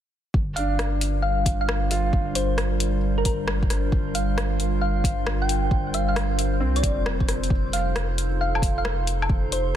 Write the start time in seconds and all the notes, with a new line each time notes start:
0.33 G1 G3 D4 F4 A#4 C5, kick
0.56 D4 F5, closed hi-hat
0.79 cross-stick, closed hi-hat
1.01 closed hi-hat
1.22 F5
1.46 kick, closed hi-hat
1.61 F5
1.69 cross-stick
1.91 F4, closed hi-hat
2.13 G1, kick
2.35 C5, closed hi-hat
2.58 cross-stick, closed hi-hat
2.80 closed hi-hat
3.18 A#4
3.25 A#4, kick, closed hi-hat
3.48 cross-stick
3.63 kick
3.70 G1, cross-stick, closed hi-hat
3.92 G1, kick
4.15 F5, closed hi-hat
4.38 cross-stick, closed hi-hat
4.60 closed hi-hat
4.81 F5
5.04 kick, closed hi-hat
5.27 cross-stick
5.42 G5
5.49 closed hi-hat
5.71 G1, kick
5.94 F5, closed hi-hat
6.09 F5
6.16 cross-stick, closed hi-hat
6.39 closed hi-hat
6.60 C2 C4
6.76 D5, closed hi-hat
6.83 F1, kick, closed hi-hat
7.06 cross-stick
7.20 kick
7.29 cross-stick, closed hi-hat
7.44 closed hi-hat
7.50 F1 D#4 A4, kick
7.73 F5, closed hi-hat
7.96 cross-stick, closed hi-hat
8.18 closed hi-hat
8.41 F5
8.55 low woodblock
8.62 kick, closed hi-hat
8.78 F5
8.85 cross-stick
9.07 closed hi-hat
9.22 low woodblock
9.29 F1 G4, kick
9.52 C5, closed hi-hat